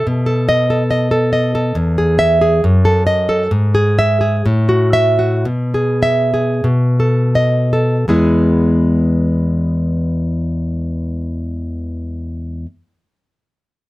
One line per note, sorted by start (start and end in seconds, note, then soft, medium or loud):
0.07 1.73 B2 medium
0.26 0.69 A4 medium
0.49 0.83 D#5 medium
0.70 1.10 A4 medium
0.91 1.32 D#5 medium
1.11 1.54 A4 soft
1.33 1.76 D#5 soft
1.55 1.77 A4 medium
1.75 2.60 E2 medium
1.98 2.40 G#4 soft
2.19 2.54 E5 medium
2.41 2.63 G#4 medium
2.64 3.49 F#2 medium
2.85 3.06 A4 soft
3.07 3.42 D#5 medium
3.29 3.51 A4 soft
3.51 4.42 G#2 medium
3.75 4.20 G#4 soft
3.99 4.36 E5 medium
4.21 4.45 G#4 soft
4.46 5.44 A2 medium
4.69 5.18 F#4 soft
4.93 5.36 E5 medium
5.19 5.47 F#4 soft
5.45 6.63 B2 medium
5.74 6.32 G#4 soft
6.03 6.53 E5 medium
6.34 6.66 G#4 soft
6.64 8.06 B2 medium
7.00 7.72 A4 soft
7.35 7.96 D#5 medium
7.73 8.09 A4 soft
8.08 12.65 E2 soft
8.08 12.66 G#3 soft
8.08 12.66 B3 soft
8.08 12.67 E4 soft
8.08 12.66 G#4 soft